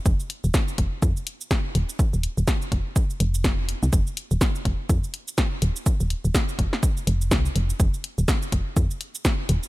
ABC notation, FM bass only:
X:1
M:4/4
L:1/16
Q:"Swing 16ths" 1/4=124
K:Cphr
V:1 name="FM bass" clef=bass
F,,, z2 E,,, z2 F,,, z F,, z4 z E,,, z | z E,,, z E,,, z2 F,,, z3 F,,,4 z C,, | F,,, z2 E,,, z2 F,,, z F,, z4 z E,,, z | z E,,, z E,,, z2 F,,, z3 F,,,2 C,, z F,,, z |
F,,, z2 E,,, z2 F,,, z F,, z4 z E,,, z |]